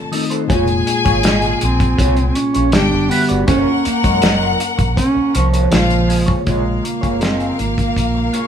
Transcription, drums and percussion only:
0.13 open hi-hat medium
0.31 closed hi-hat soft
0.50 kick loud
0.50 closed hi-hat medium
0.67 closed hi-hat soft
0.87 closed hi-hat medium
1.06 kick medium
1.06 closed hi-hat medium
1.23 snare loud
1.23 closed hi-hat medium
1.42 closed hi-hat soft
1.61 closed hi-hat medium
1.80 kick medium
1.80 closed hi-hat medium
1.99 kick medium
1.99 closed hi-hat medium
2.17 closed hi-hat soft
2.35 closed hi-hat medium
2.54 closed hi-hat soft
2.72 snare loud
2.72 closed hi-hat medium
3.11 open hi-hat medium
3.29 closed hi-hat soft
3.48 kick loud
3.48 closed hi-hat medium
3.85 closed hi-hat medium
4.04 kick medium
4.04 closed hi-hat medium
4.22 snare loud
4.22 closed hi-hat medium
4.60 closed hi-hat medium
4.79 kick medium
4.79 closed hi-hat medium
4.97 kick medium
4.97 closed hi-hat medium
5.35 closed hi-hat medium
5.54 closed hi-hat medium
5.72 snare loud
5.72 closed hi-hat medium
5.90 closed hi-hat soft
6.10 open hi-hat medium
6.28 kick medium
6.28 closed hi-hat soft
6.47 kick loud
6.47 closed hi-hat medium
6.85 closed hi-hat medium
7.03 kick medium
7.03 closed hi-hat soft
7.21 snare medium
7.21 closed hi-hat medium
7.40 closed hi-hat soft
7.59 closed hi-hat soft
7.78 kick medium
7.78 closed hi-hat soft
7.96 kick medium
7.96 closed hi-hat medium
8.34 closed hi-hat medium

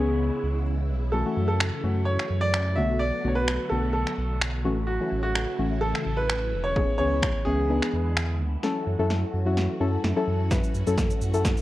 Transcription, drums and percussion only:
1.60 finger snap loud
2.20 finger snap medium
2.54 finger snap loud
3.48 finger snap loud
4.07 finger snap medium
4.42 finger snap loud
5.35 finger snap loud
5.95 finger snap medium
6.29 finger snap loud
6.76 kick loud
7.22 finger snap loud
7.22 kick loud
7.82 finger snap medium
8.17 finger snap loud
8.63 snare medium
9.10 snare medium
9.57 snare medium
10.04 snare medium
10.51 kick loud
10.51 snare medium
10.51 shaker medium
10.63 shaker soft
10.74 shaker soft
10.87 shaker medium
10.97 kick loud
10.97 snare medium
10.97 shaker medium
11.10 shaker medium
11.21 shaker medium
11.34 shaker medium
11.45 kick loud
11.45 snare medium
11.45 shaker medium
11.57 shaker soft

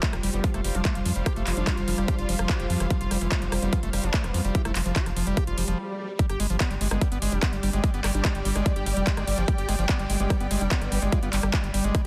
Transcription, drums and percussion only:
0.03 kick loud
0.03 clap loud
0.03 closed hi-hat medium
0.13 cross-stick medium
0.13 closed hi-hat soft
0.23 open hi-hat loud
0.34 closed hi-hat soft
0.44 kick loud
0.44 closed hi-hat medium
0.54 cross-stick soft
0.54 closed hi-hat soft
0.64 open hi-hat loud
0.75 closed hi-hat soft
0.85 kick loud
0.85 cross-stick soft
0.85 clap loud
0.85 closed hi-hat medium
0.95 closed hi-hat soft
1.06 open hi-hat loud
1.16 closed hi-hat soft
1.26 kick loud
1.26 cross-stick medium
1.26 closed hi-hat medium
1.36 closed hi-hat soft
1.47 clap medium
1.47 open hi-hat loud
1.57 closed hi-hat soft
1.67 kick loud
1.67 cross-stick soft
1.67 clap loud
1.67 closed hi-hat medium
1.77 closed hi-hat soft
1.88 open hi-hat loud
1.98 cross-stick soft
1.98 closed hi-hat soft
2.08 kick loud
2.08 closed hi-hat medium
2.19 closed hi-hat soft
2.29 open hi-hat loud
2.39 cross-stick medium
2.39 closed hi-hat soft
2.49 kick loud
2.49 clap loud
2.49 closed hi-hat medium
2.60 closed hi-hat soft
2.70 open hi-hat loud
2.80 cross-stick soft
2.80 closed hi-hat soft
2.90 kick loud
2.90 closed hi-hat medium
3.01 closed hi-hat soft
3.11 cross-stick soft
3.11 open hi-hat loud
3.21 closed hi-hat soft
3.32 kick loud
3.32 clap loud
3.32 closed hi-hat medium
3.42 closed hi-hat soft
3.52 cross-stick medium
3.52 open hi-hat loud
3.62 closed hi-hat soft
3.73 kick loud
3.73 closed hi-hat medium
3.83 closed hi-hat soft
3.93 cross-stick soft
3.93 open hi-hat loud
4.04 closed hi-hat soft
4.14 kick loud
4.14 clap loud
4.14 closed hi-hat medium
4.24 cross-stick soft
4.24 closed hi-hat soft
4.34 open hi-hat loud
4.45 closed hi-hat soft
4.55 kick loud
4.55 closed hi-hat medium
4.65 cross-stick medium
4.65 closed hi-hat soft
4.75 clap medium
4.75 open hi-hat loud
4.86 closed hi-hat soft
4.96 kick loud
4.96 clap loud
4.96 closed hi-hat medium
5.06 cross-stick soft
5.06 closed hi-hat soft
5.16 open hi-hat loud
5.27 closed hi-hat soft
5.37 kick loud
5.37 cross-stick soft
5.37 closed hi-hat medium
5.47 closed hi-hat soft
5.58 open hi-hat loud
5.68 closed hi-hat soft
6.19 kick loud
6.19 closed hi-hat medium
6.30 cross-stick soft
6.30 closed hi-hat soft
6.40 open hi-hat loud
6.50 closed hi-hat soft
6.60 kick loud
6.60 clap loud
6.60 closed hi-hat medium
6.71 closed hi-hat soft
6.81 open hi-hat medium
6.91 cross-stick medium
6.91 closed hi-hat soft
7.01 kick loud
7.01 closed hi-hat medium
7.12 closed hi-hat soft
7.22 open hi-hat loud
7.32 closed hi-hat soft
7.43 kick loud
7.43 cross-stick soft
7.43 clap loud
7.43 closed hi-hat medium
7.53 closed hi-hat soft
7.63 open hi-hat medium
7.73 closed hi-hat soft
7.84 kick loud
7.84 closed hi-hat medium
7.94 closed hi-hat soft
8.04 cross-stick medium
8.04 clap medium
8.04 open hi-hat loud
8.14 closed hi-hat soft
8.25 kick loud
8.25 clap loud
8.25 closed hi-hat medium
8.35 closed hi-hat soft
8.45 open hi-hat loud
8.56 cross-stick soft
8.56 closed hi-hat soft
8.66 kick loud
8.66 closed hi-hat medium
8.76 closed hi-hat soft
8.86 open hi-hat loud
8.97 closed hi-hat soft
9.07 kick loud
9.07 clap loud
9.07 closed hi-hat medium
9.17 cross-stick medium
9.17 closed hi-hat soft
9.27 open hi-hat medium
9.38 closed hi-hat soft
9.48 kick loud
9.48 closed hi-hat medium
9.58 closed hi-hat soft
9.69 cross-stick soft
9.69 open hi-hat loud
9.79 closed hi-hat soft
9.89 kick loud
9.89 clap loud
9.89 closed hi-hat medium
9.99 closed hi-hat soft
10.10 open hi-hat loud
10.20 closed hi-hat soft
10.30 kick loud
10.30 cross-stick medium
10.30 closed hi-hat medium
10.41 closed hi-hat soft
10.51 open hi-hat loud
10.61 closed hi-hat soft
10.71 kick loud
10.71 clap loud
10.71 closed hi-hat medium
10.82 cross-stick soft
10.82 closed hi-hat soft
10.92 open hi-hat loud
11.02 closed hi-hat soft
11.12 kick loud
11.12 closed hi-hat medium
11.23 closed hi-hat soft
11.33 clap medium
11.33 open hi-hat loud
11.43 cross-stick medium
11.43 closed hi-hat soft
11.54 kick loud
11.54 clap loud
11.54 closed hi-hat medium
11.64 closed hi-hat soft
11.74 open hi-hat loud
11.84 closed hi-hat soft
11.95 kick loud
11.95 cross-stick soft
11.95 closed hi-hat medium

